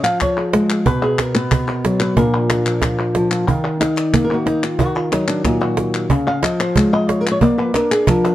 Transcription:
0.03 0.86 F3 medium
0.03 0.20 F5 medium
0.03 clap medium
0.20 0.70 C#5 medium
0.20 cajon bass loud
0.20 cajon slap soft
0.20 clap medium
0.37 0.70 G#4 soft
0.37 clap soft
0.53 0.84 G#3 medium
0.53 cajon slap loud
0.70 0.85 G#4 soft
0.70 clap medium
0.86 2.15 B2 medium
0.86 1.33 B4 loud
0.86 cajon bass loud
1.03 1.19 G#4 medium
1.19 1.52 A#4 loud
1.19 cajon slap loud
1.19 clap medium
1.35 2.15 B3 medium
1.35 1.84 B4 loud
1.35 clap medium
1.51 1.67 G#4 medium
1.51 cajon bass loud
1.51 clap medium
1.67 2.16 A#4 medium
1.84 2.15 F#3 medium
1.84 cajon slap loud
2.00 2.17 B4 loud
2.00 clap medium
2.17 3.46 A#2 medium
2.17 2.65 F3 medium
2.17 2.49 D4 soft
2.17 2.33 F4 medium
2.17 3.48 A#4 medium
2.17 cajon bass loud
2.34 3.30 F4 soft
2.50 3.47 D4 medium
2.50 cajon slap loud
2.50 clap medium
2.66 3.15 F3 medium
2.66 clap medium
2.82 cajon bass loud
2.82 cajon slap soft
2.82 clap loud
2.99 clap soft
3.15 3.46 F3 medium
3.15 cajon slap loud
3.31 3.46 F4 soft
3.31 clap medium
3.48 4.77 D#3 medium
3.48 3.80 D#4 soft
3.48 4.23 A#4 soft
3.48 3.80 F5 soft
3.48 cajon bass medium
3.48 clap soft
3.80 4.29 D#4 medium
3.80 3.96 F5 medium
3.80 cajon slap loud
3.80 clap medium
3.96 4.13 D5 loud
3.96 clap medium
4.13 4.77 A#3 medium
4.13 4.24 D#5 medium
4.13 cajon bass loud
4.13 clap medium
4.24 4.36 A#4 medium
4.30 4.45 D#4 soft
4.30 4.46 F#4 medium
4.30 clap soft
4.46 4.63 D#4 medium
4.46 cajon slap loud
4.63 4.79 F4 medium
4.63 clap medium
4.79 6.08 D#3 medium
4.79 4.95 F#4 medium
4.79 cajon bass medium
4.79 clap soft
4.95 5.12 F4 loud
4.95 cajon slap soft
5.12 6.09 F#3 medium
5.12 5.28 D#4 medium
5.12 cajon slap loud
5.12 clap medium
5.28 5.45 D4 medium
5.28 cajon slap soft
5.28 clap medium
5.45 6.09 A#2 medium
5.45 5.60 D#4 medium
5.45 cajon bass loud
5.45 cajon slap soft
5.45 clap medium
5.61 5.78 F#4 loud
5.61 clap medium
5.77 cajon slap loud
5.94 clap medium
6.10 6.43 C#3 medium
6.10 cajon bass loud
6.27 6.43 F5 loud
6.42 7.74 F3 medium
6.42 6.60 D#5 medium
6.42 cajon slap loud
6.42 clap medium
6.60 6.76 C5 medium
6.60 clap medium
6.76 7.40 G#3 medium
6.76 6.92 C#5 medium
6.76 cajon bass loud
6.76 clap medium
6.93 7.09 D#5 loud
6.93 clap medium
7.09 7.20 C#5 loud
7.09 cajon slap loud
7.21 7.31 C5 medium
7.27 7.61 F4 soft
7.27 clap medium
7.31 7.41 C#5 medium
7.41 8.35 A#3 medium
7.41 7.58 D5 loud
7.41 cajon bass loud
7.58 7.75 B4 loud
7.58 clap soft
7.74 8.35 D4 medium
7.74 7.91 A#4 medium
7.74 cajon slap loud
7.74 clap medium
7.91 8.08 G#4 medium
7.91 cajon slap soft
7.91 clap medium
8.07 8.35 F3 medium
8.07 8.24 A#4 medium
8.07 cajon bass loud
8.07 clap medium
8.24 8.35 B4 medium
8.24 cajon slap medium

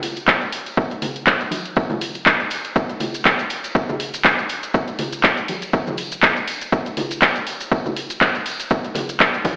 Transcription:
0.03 open hi-hat loud
0.03 tambourine medium
0.16 closed hi-hat medium
0.16 tambourine soft
0.28 kick loud
0.28 clap loud
0.28 tambourine soft
0.42 closed hi-hat soft
0.42 tambourine soft
0.52 open hi-hat loud
0.52 tambourine loud
0.66 closed hi-hat medium
0.66 tambourine soft
0.77 kick loud
0.77 tambourine soft
0.90 closed hi-hat soft
0.90 tambourine soft
1.02 open hi-hat loud
1.02 tambourine medium
1.02 low conga medium
1.16 closed hi-hat medium
1.16 tambourine soft
1.27 kick loud
1.27 clap loud
1.27 tambourine soft
1.40 closed hi-hat soft
1.40 tambourine soft
1.51 open hi-hat loud
1.51 tambourine medium
1.51 high conga medium
1.65 closed hi-hat medium
1.65 tambourine soft
1.76 kick loud
1.76 tambourine medium
1.90 closed hi-hat soft
1.90 tambourine soft
1.90 high conga medium
1.90 low conga loud
2.01 open hi-hat loud
2.01 tambourine medium
2.14 closed hi-hat medium
2.14 tambourine soft
2.26 kick loud
2.26 clap loud
2.26 tambourine soft
2.39 closed hi-hat soft
2.39 tambourine soft
2.50 open hi-hat loud
2.50 tambourine loud
2.65 closed hi-hat medium
2.65 tambourine soft
2.76 kick loud
2.76 tambourine soft
2.76 shaker medium
2.89 closed hi-hat medium
2.89 tambourine soft
2.89 shaker soft
3.00 open hi-hat loud
3.00 tambourine medium
3.00 low conga medium
3.14 closed hi-hat medium
3.14 tambourine soft
3.14 shaker medium
3.24 kick loud
3.24 clap loud
3.24 tambourine medium
3.24 shaker medium
3.39 closed hi-hat medium
3.39 tambourine soft
3.39 shaker soft
3.50 open hi-hat loud
3.50 tambourine medium
3.64 closed hi-hat medium
3.64 tambourine soft
3.64 shaker medium
3.75 kick loud
3.75 shaker medium
3.89 tambourine soft
3.89 low conga medium
3.89 shaker soft
4.00 open hi-hat loud
4.00 tambourine medium
4.13 closed hi-hat medium
4.13 tambourine soft
4.13 shaker medium
4.25 kick loud
4.25 clap loud
4.25 tambourine medium
4.25 shaker medium
4.39 closed hi-hat soft
4.39 tambourine soft
4.39 shaker soft
4.49 open hi-hat loud
4.49 tambourine medium
4.63 closed hi-hat medium
4.63 tambourine soft
4.63 shaker medium
4.74 kick loud
4.74 tambourine soft
4.74 shaker medium
4.87 closed hi-hat medium
4.87 tambourine soft
4.87 shaker soft
4.99 open hi-hat loud
4.99 tambourine medium
4.99 low conga medium
5.13 closed hi-hat medium
5.13 tambourine soft
5.13 shaker medium
5.23 kick loud
5.23 clap loud
5.23 tambourine soft
5.23 shaker medium
5.37 closed hi-hat medium
5.37 tambourine soft
5.37 shaker soft
5.48 open hi-hat loud
5.48 tambourine medium
5.48 high conga medium
5.62 closed hi-hat medium
5.62 tambourine soft
5.62 shaker medium
5.73 kick loud
5.73 tambourine medium
5.73 shaker medium
5.87 tambourine soft
5.87 high conga medium
5.87 low conga medium
5.87 shaker soft
5.97 open hi-hat loud
5.97 tambourine medium
6.11 closed hi-hat medium
6.11 tambourine soft
6.11 shaker medium
6.22 kick loud
6.22 clap loud
6.22 tambourine soft
6.22 shaker medium
6.36 closed hi-hat soft
6.36 tambourine soft
6.36 shaker soft
6.48 open hi-hat loud
6.48 tambourine loud
6.61 closed hi-hat medium
6.61 tambourine soft
6.61 shaker medium
6.72 kick loud
6.72 shaker medium
6.86 closed hi-hat medium
6.86 tambourine soft
6.86 shaker soft
6.97 open hi-hat loud
6.97 tambourine loud
6.97 low conga medium
7.11 closed hi-hat medium
7.11 tambourine soft
7.11 shaker medium
7.22 kick loud
7.22 clap loud
7.22 tambourine medium
7.22 shaker medium
7.36 closed hi-hat medium
7.36 tambourine soft
7.36 shaker soft
7.47 open hi-hat loud
7.47 tambourine medium
7.60 closed hi-hat medium
7.60 tambourine soft
7.60 shaker medium
7.71 kick loud
7.71 tambourine medium
7.71 shaker medium
7.86 tambourine soft
7.86 low conga medium
7.86 shaker soft
7.96 open hi-hat loud
7.96 tambourine medium
8.10 closed hi-hat medium
8.10 tambourine soft
8.10 shaker medium
8.21 kick loud
8.21 clap loud
8.21 tambourine medium
8.21 shaker medium
8.35 closed hi-hat soft
8.35 tambourine soft
8.35 shaker soft
8.46 open hi-hat loud
8.46 tambourine loud
8.60 closed hi-hat medium
8.60 tambourine soft
8.60 shaker medium
8.70 kick loud
8.70 tambourine soft
8.70 shaker medium
8.84 closed hi-hat medium
8.84 tambourine soft
8.84 shaker soft
8.95 open hi-hat loud
8.95 tambourine loud
8.95 high conga medium
8.95 low conga medium
9.09 closed hi-hat medium
9.09 tambourine soft
9.09 shaker medium
9.20 kick loud
9.20 clap loud
9.20 tambourine medium
9.20 shaker medium
9.34 closed hi-hat medium
9.34 tambourine soft
9.34 shaker soft
9.44 kick medium
9.44 open hi-hat loud
9.44 tambourine medium
9.44 high conga medium

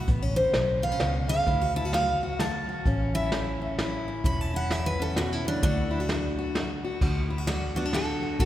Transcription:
0.08 0.45 A1 medium
0.08 0.51 A2 medium
0.08 0.22 B3 medium
0.08 kick loud
0.08 closed hi-hat medium
0.22 0.35 C#4 medium
0.36 0.82 C#4 medium
0.36 0.82 C5 medium
0.53 0.94 B1 medium
0.53 0.98 E3 medium
0.53 snare medium
0.53 closed hi-hat medium
0.82 0.92 B3 medium
0.82 1.28 F5 medium
0.92 1.47 C#4 medium
1.00 1.41 C#2 medium
1.00 1.28 B2 medium
1.00 snare medium
1.00 closed hi-hat medium
1.28 1.47 C#3 medium
1.28 1.74 F5 loud
1.46 2.58 D2 medium
1.46 1.90 D3 medium
1.46 1.61 E4 medium
1.46 kick loud
1.46 closed hi-hat medium
1.61 1.76 F#4 medium
1.76 1.85 E4 medium
1.76 1.94 A5 medium
1.85 2.22 F#4 medium
1.93 2.37 A3 medium
1.93 2.39 F5 medium
1.93 snare medium
1.93 closed hi-hat medium
2.23 2.40 F#4 medium
2.39 2.83 A3 medium
2.39 2.68 F#4 medium
2.39 3.12 A5 medium
2.39 snare medium
2.39 closed hi-hat medium
2.69 2.84 F#4 medium
2.86 3.96 A1 medium
2.86 3.29 A2 medium
2.86 3.61 C#4 medium
2.86 kick loud
2.86 closed hi-hat medium
3.14 3.79 E4 medium
3.14 3.93 E5 loud
3.32 3.75 E3 medium
3.32 snare medium
3.32 closed hi-hat medium
3.62 4.07 C#4 medium
3.78 4.22 E3 medium
3.78 4.53 E4 medium
3.78 snare medium
3.78 closed hi-hat medium
4.08 4.23 C#4 medium
4.24 5.35 E1 medium
4.24 4.68 A2 medium
4.24 4.98 C#4 medium
4.24 4.41 B5 medium
4.24 kick loud
4.24 closed hi-hat medium
4.41 4.56 A5 medium
4.54 5.64 E4 medium
4.54 4.72 F#5 medium
4.70 5.13 E3 medium
4.70 4.86 E5 medium
4.70 snare medium
4.70 closed hi-hat medium
4.86 5.01 B4 medium
4.99 5.61 C#4 medium
4.99 5.17 A4 medium
5.16 5.45 B2 medium
5.16 5.33 F#4 medium
5.16 snare medium
5.16 closed hi-hat medium
5.33 5.47 E4 loud
5.45 5.63 C#3 medium
5.45 5.62 D4 loud
5.63 6.73 D2 medium
5.63 6.06 D3 medium
5.63 6.07 A3 medium
5.63 6.08 D4 loud
5.63 7.00 D4 medium
5.63 5.90 F#4 medium
5.63 kick loud
5.63 closed hi-hat medium
5.91 6.00 E4 medium
6.00 6.37 F#4 medium
6.09 6.52 A3 medium
6.09 snare medium
6.09 closed hi-hat medium
6.39 6.55 F#4 medium
6.55 6.98 A3 medium
6.55 6.83 F#4 medium
6.55 snare medium
6.55 closed hi-hat medium
6.85 7.00 F#4 medium
7.01 8.12 D2 medium
7.01 7.44 D3 medium
7.01 7.30 F#4 medium
7.01 kick loud
7.01 crash medium
7.30 7.38 E4 medium
7.38 8.22 F#4 soft
7.47 7.91 A3 medium
7.47 7.74 D4 medium
7.47 7.75 F#4 medium
7.47 snare medium
7.47 ride medium
7.76 7.85 B3 medium
7.76 7.93 D4 medium
7.76 7.94 F#4 medium
7.85 8.40 D4 soft
7.93 8.37 A2 medium
7.93 8.38 F#4 medium
7.93 8.40 A4 medium
7.93 snare medium
7.93 ride medium
8.23 8.40 F#4 medium
8.39 8.45 A1 medium
8.39 8.45 D3 medium
8.39 8.45 F#4 medium
8.39 8.45 B4 loud
8.39 kick loud
8.39 ride medium

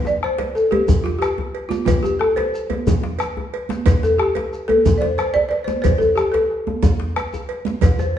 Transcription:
0.05 0.23 D5 medium
0.05 bombo rim soft
0.05 djembe tone medium
0.05 shekere soft
0.23 0.57 C5 loud
0.23 bombo rim medium
0.38 cowbell medium
0.38 djembe slap medium
0.38 high conga soft
0.55 0.72 A4 medium
0.55 bombo rim soft
0.55 shekere soft
0.71 1.05 G4 loud
0.71 cowbell medium
0.71 djembe tone medium
0.71 high conga medium
0.88 bombo low loud
0.88 low conga medium
0.88 djembe bass medium
0.88 shekere medium
1.04 1.21 F4 medium
1.04 djembe slap medium
1.19 1.66 G4 medium
1.19 bombo rim loud
1.19 cowbell medium
1.19 shekere soft
1.38 high conga soft
1.38 djembe tone medium
1.55 cowbell soft
1.69 1.84 F4 medium
1.69 bombo rim soft
1.69 djembe slap medium
1.69 high conga medium
1.69 shekere soft
1.85 2.03 F4 medium
1.85 bombo low loud
1.85 cowbell medium
1.85 djembe slap soft
1.85 low conga medium
1.85 djembe bass medium
1.85 shekere medium
2.03 2.19 G4 medium
2.03 bombo rim soft
2.03 djembe tone medium
2.03 shekere soft
2.19 2.37 A4 medium
2.19 bombo rim loud
2.36 2.83 C5 medium
2.36 cowbell medium
2.36 djembe slap medium
2.36 high conga soft
2.54 bombo rim soft
2.54 shekere soft
2.70 cowbell medium
2.70 high conga medium
2.70 djembe tone medium
2.87 bombo low loud
2.87 djembe bass medium
2.87 low conga medium
2.87 shekere medium
3.03 djembe slap medium
3.19 bombo rim loud
3.19 cowbell medium
3.19 shekere soft
3.37 high conga soft
3.37 djembe tone medium
3.54 cowbell medium
3.69 bombo rim soft
3.69 djembe slap medium
3.69 high conga medium
3.69 shekere soft
3.86 bombo low medium
3.86 cowbell medium
3.86 djembe slap soft
3.86 low conga medium
3.86 djembe bass medium
3.86 shekere medium
4.03 4.20 A4 medium
4.03 bombo rim soft
4.03 djembe tone medium
4.03 shekere soft
4.18 4.70 G4 medium
4.18 bombo rim loud
4.35 cowbell medium
4.35 djembe slap medium
4.35 high conga soft
4.53 bombo rim soft
4.53 shekere soft
4.68 4.95 A4 loud
4.68 cowbell medium
4.68 high conga medium
4.68 djembe tone medium
4.86 bombo low loud
4.86 low conga medium
4.86 djembe bass medium
4.86 shekere medium
4.98 5.17 C5 medium
4.98 5.02 D5 medium
5.02 djembe slap medium
5.18 5.35 C5 medium
5.18 bombo rim loud
5.18 cowbell medium
5.18 shekere soft
5.34 5.47 D5 loud
5.34 high conga soft
5.34 djembe tone medium
5.49 5.67 D5 loud
5.49 cowbell soft
5.64 5.81 C5 medium
5.64 djembe slap medium
5.64 high conga medium
5.64 shekere soft
5.69 bombo rim soft
5.82 6.00 C5 loud
5.82 bombo low loud
5.82 cowbell medium
5.82 high conga soft
5.82 low conga medium
5.82 djembe bass medium
5.82 shekere medium
5.98 6.15 A4 medium
5.98 djembe tone medium
5.98 shekere soft
6.16 6.23 G4 medium
6.16 bombo rim loud
6.16 shekere soft
6.32 7.28 A4 medium
6.32 cowbell soft
6.32 djembe slap medium
6.32 high conga soft
6.51 bombo rim soft
6.67 bombo rim soft
6.67 high conga medium
6.67 djembe tone medium
6.83 bombo low loud
6.83 low conga medium
6.83 djembe bass medium
6.83 shekere medium
7.00 djembe slap medium
7.16 bombo rim loud
7.16 cowbell medium
7.16 djembe slap soft
7.16 high conga soft
7.16 shekere soft
7.33 bombo rim soft
7.33 djembe tone medium
7.33 shekere soft
7.49 cowbell medium
7.65 djembe slap medium
7.65 high conga medium
7.65 shekere soft
7.81 bombo low medium
7.81 cowbell medium
7.81 djembe slap soft
7.81 low conga medium
7.81 djembe bass medium
7.81 shekere medium
7.99 8.16 C5 medium
7.99 bombo rim soft
7.99 djembe tone medium
7.99 shekere soft

